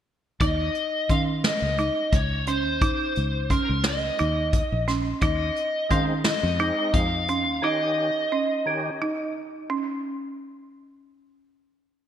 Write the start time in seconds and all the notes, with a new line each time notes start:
0.41 D#2 D#4 D#5, kick, closed hi-hat
0.75 closed hi-hat
1.09 D#3 C#4 F5, kick, closed hi-hat
1.44 D#5, snare, closed hi-hat
1.62 C#2
1.78 D#4, closed hi-hat
2.12 C#2 C#5, kick, closed hi-hat
2.47 C#4 C5, closed hi-hat
2.66 D#2
2.81 D#4, kick, closed hi-hat
3.16 C#2, closed hi-hat
3.50 C#4 A#4, kick, closed hi-hat
3.69 C#2
3.84 D#5, snare, closed hi-hat
4.18 D#2 D#4, closed hi-hat
4.53 kick, closed hi-hat
4.72 A#1
4.88 C#4, snare, closed hi-hat
5.21 D#2 D#4 D#5, kick, closed hi-hat
5.56 closed hi-hat
5.89 D#3 G#3 C4 C#4 D#4 F5, kick, closed hi-hat
6.24 D#5, snare, closed hi-hat
6.43 F2
6.59 G#3 C4 D#4, closed hi-hat
6.93 F2 F5, kick, closed hi-hat
7.28 C#4, closed hi-hat
7.47 D#2
7.62 D#3 C#4 D#4 G4 D#5
8.32 C#4
8.66 D#3 C#4 G4
9.02 D#4
9.70 C#4